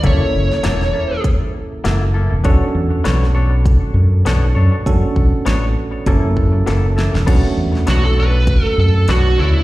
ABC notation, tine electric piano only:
X:1
M:4/4
L:1/8
Q:"Swing 16ths" 1/4=100
K:Bm
V:1 name="Tine electric piano"
[^A,CE=A]8 | [CDFA]8 | [CDFA]4 [^A,CE=A]4 | [A,CDF]8 |]